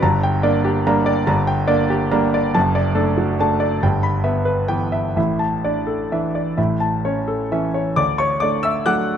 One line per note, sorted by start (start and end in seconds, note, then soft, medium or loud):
0.02 0.42 G1 medium
0.02 0.42 G2 medium
0.02 0.35 A#5 medium
0.23 0.56 G5 medium
0.43 0.82 A#3 medium
0.43 0.82 D4 medium
0.43 0.77 D5 medium
0.65 0.99 G4 medium
0.87 1.24 G3 medium
0.87 1.24 A#3 medium
0.87 1.24 D4 medium
0.87 1.20 A#5 medium
1.06 1.39 D5 medium
1.27 1.68 G1 medium
1.27 1.68 G2 medium
1.27 1.60 A#5 medium
1.47 1.82 G5 medium
1.68 2.08 A#3 medium
1.68 2.09 D4 medium
1.68 2.04 D5 medium
1.90 2.26 G4 medium
2.11 2.51 G3 medium
2.11 2.51 A#3 medium
2.11 2.51 D4 medium
2.11 2.46 A#5 medium
2.34 2.55 D5 medium
2.55 2.95 F#1 medium
2.55 2.95 F#2 medium
2.55 2.88 A5 medium
2.75 3.10 D5 medium
2.95 3.35 A3 medium
2.95 3.35 D4 medium
2.95 3.30 A4 medium
3.17 3.52 F#3 medium
3.39 3.79 A3 medium
3.39 3.78 D4 medium
3.39 3.74 A5 medium
3.60 3.82 D5 medium
3.83 4.24 G1 medium
3.83 4.24 G2 medium
3.83 4.17 G5 medium
4.03 4.38 B5 medium
4.24 4.66 B3 medium
4.24 4.60 E5 medium
4.45 4.83 B4 medium
4.68 5.12 E3 medium
4.68 5.12 B3 medium
4.68 5.07 G5 medium
4.92 5.15 E5 medium
5.16 5.62 A1 medium
5.16 5.63 A2 medium
5.16 5.54 E5 medium
5.39 5.78 A5 medium
5.64 6.08 D4 medium
5.64 6.02 D5 medium
5.87 6.26 A4 medium
6.12 6.54 E3 medium
6.12 6.54 D4 medium
6.12 6.49 E5 medium
6.35 6.58 D5 medium
6.57 7.02 A1 medium
6.57 7.02 A2 medium
6.57 6.94 E5 medium
6.80 7.17 A5 medium
7.05 7.48 C#4 soft
7.05 7.42 C#5 medium
7.28 7.66 A4 medium
7.52 7.94 E3 soft
7.52 7.94 C#4 soft
7.52 7.89 E5 medium
7.74 7.97 C#5 medium
7.96 8.39 D2 medium
7.96 8.17 D5 medium
7.96 8.18 D6 medium
8.18 8.40 C#5 medium
8.18 8.40 C#6 medium
8.40 8.81 A3 soft
8.40 8.81 D4 soft
8.40 8.62 D5 medium
8.40 8.62 D6 medium
8.63 8.84 E5 medium
8.63 8.85 E6 medium
8.86 9.17 F#3 soft
8.86 9.17 A3 soft
8.86 9.17 D4 medium
8.86 9.17 F#5 medium
8.86 9.17 D6 medium
8.86 9.17 F#6 medium